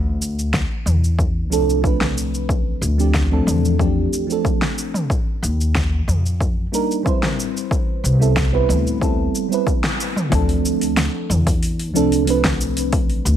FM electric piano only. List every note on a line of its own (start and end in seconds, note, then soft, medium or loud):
1.50 1.80 F3 medium
1.50 1.80 A3 medium
1.50 1.80 C4 medium
1.50 1.81 D4 medium
1.50 1.81 A4 medium
1.82 2.94 F3 medium
1.82 2.94 A3 medium
1.82 2.95 C4 medium
1.86 2.96 D4 medium
1.86 2.96 B4 medium
2.98 3.27 F3 medium
2.98 3.27 A3 medium
2.98 3.28 C4 medium
2.98 3.28 D4 medium
2.98 3.28 G4 medium
3.30 3.75 F3 medium
3.30 3.76 A3 medium
3.30 3.76 C4 medium
3.30 3.76 D4 medium
3.30 3.77 A4 loud
3.78 4.24 F3 medium
3.78 4.25 A3 medium
3.78 4.25 C4 medium
3.78 4.25 D4 medium
3.78 4.26 G4 medium
4.27 5.07 F3 medium
4.27 5.08 A3 medium
4.27 5.08 C4 medium
4.31 5.09 D4 medium
4.31 5.10 A4 medium
6.72 7.01 G3 medium
6.72 7.02 A#3 medium
6.72 7.02 D4 medium
6.72 7.02 D#4 medium
6.72 7.03 A#4 medium
7.03 8.15 G3 medium
7.03 8.17 C4 medium
7.03 8.16 B4 medium
7.07 8.17 E4 medium
7.07 8.18 C5 medium
8.19 8.49 G3 medium
8.19 8.49 B3 medium
8.19 8.49 C4 medium
8.19 8.49 E4 medium
8.19 8.50 A4 medium
8.52 8.97 G3 medium
8.52 8.97 B3 medium
8.52 8.98 C4 medium
8.52 8.98 E4 medium
8.52 8.98 B4 loud
9.00 9.46 G3 medium
9.00 9.46 B3 medium
9.00 9.47 C4 medium
9.00 9.47 E4 medium
9.00 9.48 A4 medium
9.49 10.29 G3 medium
9.49 10.29 B3 medium
9.49 10.30 C4 medium
9.49 10.31 E4 medium
9.54 10.31 B4 medium
10.29 11.28 F3 loud
10.29 11.29 A3 medium
10.29 11.30 C4 medium
10.34 11.31 D4 medium
10.34 11.31 A4 loud
11.94 12.23 F3 medium
11.94 12.23 A3 medium
11.94 12.24 C4 medium
11.94 12.24 D4 medium
11.94 12.25 A4 medium
12.25 13.37 F3 medium
12.25 13.37 A3 medium
12.25 13.37 C4 medium
12.29 13.37 D4 medium
12.29 13.37 B4 medium